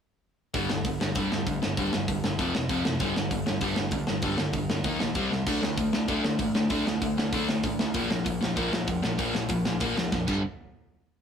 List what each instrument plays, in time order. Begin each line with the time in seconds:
0.54 picked electric bass G1, overdriven electric guitar G2 D3 G3, kick, open hi-hat
0.70 picked electric bass G1, overdriven electric guitar G2 D3, snare
0.85 picked electric bass G1, overdriven electric guitar G2 D3, kick, open hi-hat
1.00 picked electric bass G1, overdriven electric guitar G2 D3, snare
1.15 picked electric bass G1, overdriven electric guitar G2 D3 G3, kick, open hi-hat
1.32 picked electric bass G1, overdriven electric guitar G2 D3, snare
1.47 picked electric bass D2, overdriven electric guitar G2 D3, kick, open hi-hat
1.62 picked electric bass G1, overdriven electric guitar G2 D3, snare
1.77 picked electric bass G1, overdriven electric guitar G2 D3 G3, kick, open hi-hat
1.93 picked electric bass G1, overdriven electric guitar G2 D3, snare
2.08 picked electric bass G1, overdriven electric guitar G2 D3, kick, open hi-hat
2.24 picked electric bass G1, overdriven electric guitar G2 D3, snare
2.39 picked electric bass F1, overdriven electric guitar F2 C3 F3, kick, open hi-hat
2.54 picked electric bass F1, overdriven electric guitar F2 C3, snare
2.69 picked electric bass F1, overdriven electric guitar F2 C3 F3, kick, open hi-hat
2.85 picked electric bass F#1, overdriven electric guitar F2 C3, snare
3.00 picked electric bass G1, overdriven electric guitar G2 D3 G3, kick, open hi-hat
3.16 picked electric bass G1, overdriven electric guitar G2 D3, snare
3.31 picked electric bass G1, overdriven electric guitar G2 D3, kick, open hi-hat
3.46 picked electric bass G1, overdriven electric guitar G2 D3, snare
3.61 picked electric bass G1, overdriven electric guitar G2 D3 G3, kick, open hi-hat
3.76 picked electric bass G1, overdriven electric guitar G2 D3, snare
3.91 picked electric bass D2, overdriven electric guitar G2 D3, kick, open hi-hat
4.07 picked electric bass G1, overdriven electric guitar G2 D3, snare
4.22 picked electric bass G1, overdriven electric guitar G2 D3 G3, kick, open hi-hat
4.38 picked electric bass G1, overdriven electric guitar G2 D3, snare
4.53 picked electric bass G1, overdriven electric guitar G2 D3, kick, open hi-hat
4.70 picked electric bass G1, overdriven electric guitar G2 D3, snare
4.84 picked electric bass D#2, overdriven electric guitar D#3 A#3 D#4, kick, open hi-hat
5.00 picked electric bass A#1, overdriven electric guitar D#3 A#3, snare
5.15 picked electric bass C2, overdriven electric guitar C3 G3 C4, kick, open hi-hat
5.31 picked electric bass C2, overdriven electric guitar C3 G3, snare
5.47 picked electric bass D2, overdriven electric guitar D3 A3 D4, kick, open hi-hat, splash
5.61 picked electric bass D2, overdriven electric guitar D3 A3, snare
5.76 picked electric bass D2, overdriven electric guitar D3 A3, kick, open hi-hat
5.93 picked electric bass D2, overdriven electric guitar D3 A3, snare
6.08 picked electric bass D2, overdriven electric guitar D3 A3 D4, kick, open hi-hat
6.23 picked electric bass D2, overdriven electric guitar D3 A3, snare
6.39 picked electric bass A1, overdriven electric guitar D3 A3, kick, open hi-hat
6.55 picked electric bass D2, overdriven electric guitar D3 A3, snare
6.70 picked electric bass D2, overdriven electric guitar D3 A3 D4, kick, open hi-hat
6.85 picked electric bass D2, overdriven electric guitar D3 A3, snare
7.02 picked electric bass D2, overdriven electric guitar D3 A3, kick, open hi-hat
7.17 picked electric bass D2, overdriven electric guitar D3 A3, snare
7.33 picked electric bass D2, overdriven electric guitar D3 A3 D4, kick, open hi-hat
7.49 picked electric bass D2, overdriven electric guitar D3 A3, snare
7.63 picked electric bass A1, overdriven electric guitar D3 A3, kick, open hi-hat
7.79 picked electric bass D2, overdriven electric guitar D3 A3, snare
7.94 picked electric bass A#1, overdriven electric guitar A#2 F3 A#3, kick, open hi-hat
8.10 picked electric bass A#1, overdriven electric guitar A#2 F3, snare
8.25 picked electric bass A#1, overdriven electric guitar A#2 F3, kick, open hi-hat
8.41 picked electric bass A#1, overdriven electric guitar A#2 F3, snare
8.56 picked electric bass A#1, overdriven electric guitar A#2 F3 A#3, kick, open hi-hat
8.72 picked electric bass A#1, overdriven electric guitar A#2 F3, snare
8.87 picked electric bass F1, overdriven electric guitar A#2 F3, kick, open hi-hat
9.02 picked electric bass A#1, overdriven electric guitar A#2 F3, snare
9.18 picked electric bass A#1, overdriven electric guitar A#2 F3 A#3, kick, open hi-hat
9.33 picked electric bass A#1, overdriven electric guitar A#2 F3, snare
9.49 picked electric bass A#1, overdriven electric guitar A#2 F3, kick, open hi-hat
9.65 picked electric bass A#1, overdriven electric guitar A#2 F3, snare
9.80 picked electric bass A#1, overdriven electric guitar A#2 F3 A#3, kick, open hi-hat
9.96 picked electric bass A#1, overdriven electric guitar A#2 F3, snare
10.12 picked electric bass F1, overdriven electric guitar A#2 F3, kick, snare
10.28 picked electric bass G1, overdriven electric guitar G2 D3 G3, kick, crash